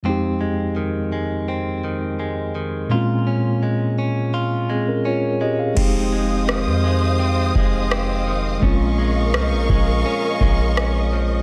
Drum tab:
CC |--------|--------|x-------|--------|
SD |--------|--------|--r---r-|--r---r-|
BD |--------|--------|o----o--|o--o-o--|